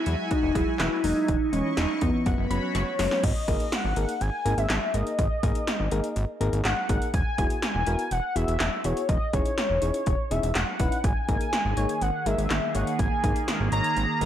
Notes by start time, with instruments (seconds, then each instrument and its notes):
Already playing: soft synth lead E4, analog synth pad F#4 E5 G#5
0.06 analog synth bass E2, synth keys F#3 G#3 E4, synth pluck E4, closed hi-hat
0.19 synth keys F#3 G#3 E4
0.31 soft synth lead D#4, synth pluck F#4, kick, closed hi-hat
0.43 analog synth bass E1
0.55 analog synth bass E1, synth keys F#3 G#3 E4, soft synth lead E4, synth pluck G#4, kick, closed hi-hat
0.67 synth keys F#3 G#3 E4
0.80 analog synth bass E1, soft synth lead E4, synth pluck B4, snare, clap, closed hi-hat
1.04 analog synth bass E1, synth keys F#3 G#3 A#3, soft synth lead D#4, open hi-hat
1.16 synth keys F#3 G#3 E4
1.28 analog synth bass E1, synth pluck E3, analog synth pad E4 D#5 C#6, kick, closed hi-hat
1.53 analog synth bass E1, synth keys E3 C#4 D#4, synth pluck G#3, soft synth lead C#4, closed hi-hat
1.77 analog synth bass E1, synth pluck C#4, soft synth lead D#4, snare, closed hi-hat
2.01 analog synth bass E2, synth keys E3 C#4 D#4, soft synth lead B3, synth pluck D#4, kick, closed hi-hat
2.14 synth keys E3 C#4 D#4
2.26 analog synth bass F#1, analog synth pad F#4 C#5 B5, synth pluck F#5, kick, closed hi-hat
2.38 analog synth bass F#1
2.50 analog synth bass F#1, synth keys F#3 B3 C#4, synth pluck B5, closed hi-hat
2.62 synth keys F#3 B3 C#4
2.75 analog synth bass F#1, soft synth lead C#5, synth pluck C#6, snare, closed hi-hat
2.99 analog synth bass F#1, synth keys F#3 B3 C#4, snare, open hi-hat
3.11 synth keys F#3 B3 C#4, snare
3.23 analog synth bass G#1, soft synth lead D#5, kick, closed hi-hat, crash
3.48 analog synth bass G#1, synth keys A#3 D#4 G#4 A#4, kick, closed hi-hat
3.60 closed hi-hat
3.72 soft synth lead F#5, snare, closed hi-hat
3.85 analog synth bass G#1
3.96 analog synth bass G#1, synth keys A#3 D#4 G#4 A#4, closed hi-hat
4.09 closed hi-hat
4.21 analog synth bass G#1, soft synth lead G#5, closed hi-hat
4.45 analog synth bass G#1, synth keys A#3 D#4 G#4 A#4, closed hi-hat
4.58 analog synth bass G#1, soft synth lead E5, closed hi-hat
4.70 analog synth bass G#1, snare, clap, closed hi-hat
4.94 analog synth bass G#1, synth keys A#3 D#4 G#4 A#4, soft synth lead D#5, closed hi-hat
5.07 closed hi-hat
5.19 analog synth bass G#1, kick, closed hi-hat
5.43 analog synth bass G#1, synth keys A#3 D#4 G#4 A#4, kick, closed hi-hat
5.55 closed hi-hat
5.67 snare, closed hi-hat
5.80 analog synth bass G#1
5.92 analog synth bass G#1, synth keys A#3 D#4 G#4 A#4, closed hi-hat
6.04 closed hi-hat
6.16 analog synth bass G#1, closed hi-hat
6.41 analog synth bass G#1, synth keys A#3 D#4 G#4 A#4, closed hi-hat
6.53 analog synth bass G#1, closed hi-hat
6.65 analog synth bass G#1, soft synth lead F#5, snare, clap, closed hi-hat
6.89 analog synth bass G#1, synth keys A#3 D#4 G#4 A#4, kick, closed hi-hat
7.02 closed hi-hat
7.14 analog synth bass E1, soft synth lead G#5, kick, closed hi-hat
7.38 analog synth bass E1, synth keys B3 E4 F#4 G#4, kick, closed hi-hat
7.50 closed hi-hat
7.62 soft synth lead G#5, snare, closed hi-hat
7.75 analog synth bass E1
7.87 analog synth bass E1, synth keys B3 E4 F#4 A#4, closed hi-hat
7.99 closed hi-hat
8.11 analog synth bass E1, soft synth lead F#5, closed hi-hat
8.36 analog synth bass E1, synth keys B3 E4 F#4 G#4, soft synth lead E5, closed hi-hat
8.48 analog synth bass E1, closed hi-hat
8.60 analog synth bass E1, snare, clap, closed hi-hat
8.84 analog synth bass E1, synth keys B3 E4 F#4 G#4, soft synth lead C#5, closed hi-hat
8.97 closed hi-hat
9.09 analog synth bass E1, soft synth lead D#5, kick, closed hi-hat
9.33 analog synth bass E1, synth keys C#4 D#4 E4 G#4, soft synth lead C#5, kick, closed hi-hat
9.45 closed hi-hat
9.58 snare, closed hi-hat
9.70 analog synth bass E1
9.82 analog synth bass E1, synth keys C#4 D#4 E4 G#4, closed hi-hat
9.94 closed hi-hat
10.06 analog synth bass E1, kick, closed hi-hat
10.31 analog synth bass E1, synth keys C#4 D#4 E4 G#4, soft synth lead E5, closed hi-hat
10.43 analog synth bass E1, closed hi-hat
10.55 analog synth bass E1, soft synth lead F#5, snare, clap, closed hi-hat
10.80 analog synth bass E1, synth keys C#4 D#4 E4 B4, kick, closed hi-hat
10.92 closed hi-hat
11.04 analog synth bass G#1, analog synth pad D#3 A#3 G#4, soft synth lead G#5, kick, closed hi-hat
11.28 analog synth bass G#1, synth keys A#3 D#4 G#4 A#4, kick, closed hi-hat
11.41 closed hi-hat
11.53 snare, closed hi-hat
11.65 analog synth bass G#1
11.77 analog synth bass G#1, synth keys A#3 D#4 G#4 C#5, closed hi-hat
11.89 closed hi-hat
12.02 analog synth bass G#1, soft synth lead F#5, closed hi-hat
12.26 analog synth bass G#1, synth keys A#3 D#4 G#4 A#4, soft synth lead E5, closed hi-hat
12.38 analog synth bass G#1, closed hi-hat
12.50 analog synth bass G#1, snare, clap, closed hi-hat
12.75 analog synth bass G#1, synth keys A#3 D#4 G#4 C#5, soft synth lead F#5, closed hi-hat
12.87 closed hi-hat
12.99 analog synth bass G#1, soft synth lead G#5, kick, closed hi-hat
13.24 analog synth bass G#1, synth keys A#3 D#4 G#4 A#4, kick, closed hi-hat
13.36 closed hi-hat
13.48 snare, closed hi-hat
13.60 analog synth bass G#1
13.72 analog synth bass G#1, synth keys A#3 D#4 G#4 C#5, soft synth lead A#5, closed hi-hat
13.84 closed hi-hat
13.97 analog synth bass G#1, closed hi-hat
14.21 analog synth bass G#1, synth keys A#3 D#4 G#4 A#4, closed hi-hat